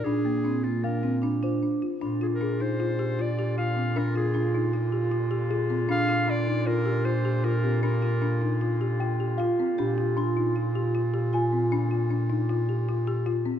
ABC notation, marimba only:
X:1
M:5/4
L:1/8
Q:1/4=155
K:Bbmix
V:1 name="Marimba"
D B, D F B, C D F D F | D F D E F G F G F C | D F D E F G F G F C | D F D E F G F G F C |
D F D E F G F G F C | D F D E F G F G F C | D F D E F G F G F C |]